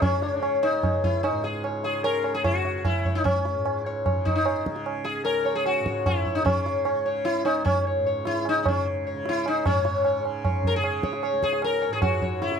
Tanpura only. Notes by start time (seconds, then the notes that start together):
Already playing: C#2 G#2 C#3
0.17 C#3
0.75 C#2
1.30 G#2
1.87 C#3
2.43 C#3
2.99 C#2
3.55 G#2
4.12 C#3
4.69 C#3
5.23 C#2
5.80 G#2
6.36 C#3
6.92 C#3
7.47 C#2
8.00 G#2
8.58 C#3
9.13 C#3
9.66 G#2
10.19 C#3
10.77 C#3
11.32 C#2
11.88 G#2
12.41 C#3